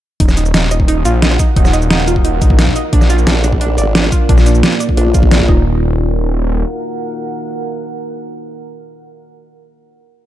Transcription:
0.20 detuned saw bass D#1, ambient pad D#4 A#4 F5 F#5, synth arpeggio sound D#4, kick, closed hi-hat
0.29 cross-stick, snare, cabasa
0.37 synth arpeggio sound D#4, closed hi-hat, cabasa
0.46 cabasa
0.54 detuned saw bass D#1, synth arpeggio sound D#4, snare, closed hi-hat
0.71 synth arpeggio sound D#5, cross-stick, closed hi-hat, cabasa
0.80 kick
0.88 synth arpeggio sound D#4, closed hi-hat
1.05 detuned saw bass A#1, synth arpeggio sound F4, closed hi-hat, cabasa
1.22 synth arpeggio sound D#4, snare, closed hi-hat
1.31 cross-stick
1.39 synth arpeggio sound D#4, kick, closed hi-hat, cabasa
1.56 detuned saw bass D#1, synth arpeggio sound D#4, kick, closed hi-hat
1.65 cross-stick, snare, cabasa
1.73 synth arpeggio sound D#5, closed hi-hat, cabasa
1.82 cabasa
1.90 detuned saw bass D#1, synth arpeggio sound D#4, snare, closed hi-hat
2.08 synth arpeggio sound F4, closed hi-hat, cabasa
2.16 kick
2.25 synth arpeggio sound D#4, closed hi-hat
2.42 detuned saw bass A#1, synth arpeggio sound D#4, kick, closed hi-hat, cabasa
2.50 kick
2.59 synth arpeggio sound D#4, snare, closed hi-hat
2.67 kick
2.76 synth arpeggio sound D#5, closed hi-hat, cabasa
2.93 detuned saw bass A#1, ambient pad A#3 F4 D5, synth arpeggio sound D4, kick, closed hi-hat
3.01 cross-stick, snare, cabasa
3.10 synth arpeggio sound F4, closed hi-hat, cabasa
3.18 cabasa
3.27 wobble bass A#1, synth arpeggio sound D4, snare, closed hi-hat
3.44 synth arpeggio sound D4, cross-stick, closed hi-hat, cabasa
3.52 kick
3.61 synth arpeggio sound D4, closed hi-hat
3.78 wobble bass G#1, synth arpeggio sound D5, closed hi-hat, cabasa
3.95 synth arpeggio sound D4, snare, closed hi-hat
4.04 cross-stick
4.12 synth arpeggio sound F4, kick, closed hi-hat, cabasa
4.29 detuned saw bass A#1, synth arpeggio sound D4, kick, closed hi-hat
4.38 cross-stick, snare, cabasa
4.46 synth arpeggio sound D4, closed hi-hat, cabasa
4.55 cabasa
4.63 synth arpeggio sound D4, snare, closed hi-hat
4.80 synth arpeggio sound D5, closed hi-hat, cabasa
4.89 kick
4.97 wobble bass A#1, synth arpeggio sound D4, closed hi-hat
5.14 synth arpeggio sound F4, kick, closed hi-hat, cabasa
5.23 kick
5.31 synth arpeggio sound D4, snare, closed hi-hat
5.40 kick
5.48 detuned saw bass D#1, synth arpeggio sound D#4, ambient pad D#4 A#4 F5 F#5, kick

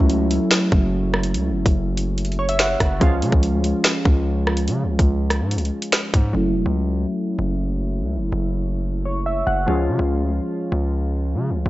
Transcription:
Already playing: synth keys F#3 A3 C#4 E4
0.00 808-style bass C#2
0.10 closed hi-hat
0.31 closed hi-hat
0.51 finger snap, snare, closed hi-hat
0.72 808-style bass F#1, kick
1.14 cross-stick
1.24 closed hi-hat
1.34 808-style bass C#2, closed hi-hat
1.50 808-style bass F#1
1.66 808-style bass F#1, kick, closed hi-hat
1.97 closed hi-hat
2.18 closed hi-hat
2.25 closed hi-hat
2.32 closed hi-hat
2.39 synth keys C#5
2.49 synth keys E5, closed hi-hat
2.59 synth keys F#5, finger snap, snare
2.80 808-style bass F#1, kick, cross-stick, closed hi-hat
3.00 808-style bass C#2, synth keys F3 G#3 C#4 F4, kick, closed hi-hat
3.22 808-style bass C#3, closed hi-hat
3.32 808-style bass C#2, kick
3.43 closed hi-hat
3.53 808-style bass D2
3.64 808-style bass C#2, closed hi-hat
3.84 finger snap, snare, closed hi-hat
4.05 808-style bass C#2, kick
4.47 cross-stick
4.57 closed hi-hat
4.68 808-style bass C#3, closed hi-hat
4.83 808-style bass C#2
4.99 808-style bass C#2, kick, closed hi-hat
5.30 cross-stick, closed hi-hat
5.41 808-style bass G#2
5.51 closed hi-hat
5.56 808-style bass C#2, closed hi-hat
5.65 closed hi-hat
5.82 closed hi-hat
5.92 finger snap, snare
6.14 808-style bass G#2, kick, closed hi-hat
6.33 808-style bass F#1, synth keys F#3 A3 C#4 E4
6.55 808-style bass E1
6.66 808-style bass C#2
7.39 808-style bass F#1
8.01 808-style bass C#2
8.17 808-style bass F#1
8.32 808-style bass F#1
9.05 synth keys C#5
9.26 synth keys E5
9.47 808-style bass F#1, synth keys F#5
9.66 808-style bass C#2, synth keys F3 G#3 C#4 F4
9.89 808-style bass C#3
9.99 808-style bass C#2
10.20 808-style bass D2
10.30 808-style bass C#2
10.72 808-style bass C#2
11.35 808-style bass C#3
11.50 808-style bass C#2
11.66 808-style bass C#2

